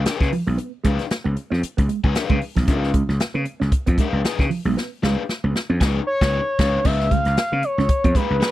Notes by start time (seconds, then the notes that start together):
0.06 D#4 G#4 B4 G#5, muted clean electric guitar stroke, snare, closed hi-hat
0.21 C#3, kick, snare
0.32 F3, open hi-hat
0.47 B1 G#3
0.58 B3, closed hi-hat
0.84 C#2 G#3 D#4 G#4 B4 F5, kick, closed hi-hat
0.99 muted clean electric guitar stroke, snare, closed hi-hat
1.11 snare, closed hi-hat
1.24 C#2 B3
1.36 muted clean electric guitar stroke, closed hi-hat
1.50 F2 C#4, snare
1.62 muted clean electric guitar stroke, muted slap bass stroke, closed hi-hat
1.77 C#2 B3, kick, closed hi-hat
1.89 G#3, closed hi-hat
2.04 C#2 D#4 G#4 B4 G#5, kick
2.15 D#4 G#4 B4 F5, snare, closed hi-hat
2.30 C#3 G#3, kick
2.41 muted clean electric guitar stroke, open hi-hat
2.55 B1 F3, kick, snare
2.68 C#2 B3 D#4 G#4 B4 F5, kick, closed hi-hat
2.84 snare
2.94 G#3, kick, closed hi-hat
3.09 C#2, muted clean electric guitar stroke, snare
3.20 muted slap bass stroke, snare, closed hi-hat
3.34 C#3 B3
3.45 muted clean electric guitar stroke, closed hi-hat
3.60 C#2 C#4, snare
3.72 muted clean electric guitar stroke, kick, closed hi-hat
3.86 F2 B3, kick, closed hi-hat
3.98 G#3 D#4 G#4 B4 F5, kick, closed hi-hat
4.13 C#2
4.24 D#4 G#4 B4 G#5, muted clean electric guitar stroke, snare, closed hi-hat
4.39 C#3, kick, snare
4.50 F3, open hi-hat
4.65 B1 G#3
4.77 B3, snare
5.03 C#2 G#3 D#4 G#4 B4 F5, snare
5.18 muted clean electric guitar stroke
5.29 snare
5.44 C#2 B3
5.55 muted clean electric guitar stroke, snare
5.70 F2 C#4
5.81 C#2 D#4 G#4 B4 G#5, kick, snare, crash
6.07 C#5
6.21 C#2 D#4 G#4 B4 G#5, kick, snare
6.59 C#2 D#4 G#4 B4 F5, kick, snare, crash
6.85 C#2 B3 D#4 G#4 B4 E5 F5, kick, crash
7.00 snare
7.10 G#3 F5, kick, closed hi-hat
7.25 C#2, muted clean electric guitar stroke, snare, closed hi-hat
7.37 snare, closed hi-hat
7.52 C#3 B3
7.63 C#5, muted clean electric guitar stroke, closed hi-hat
7.78 C#2 C#4, snare
7.89 muted clean electric guitar stroke, kick, closed hi-hat
8.04 F2 B3, kick, closed hi-hat
8.15 G#3 D#4 G#4 B4 F5, kick, closed hi-hat
8.30 C#2
8.40 D#4 G#4 B4 G#5, muted clean electric guitar stroke, snare, closed hi-hat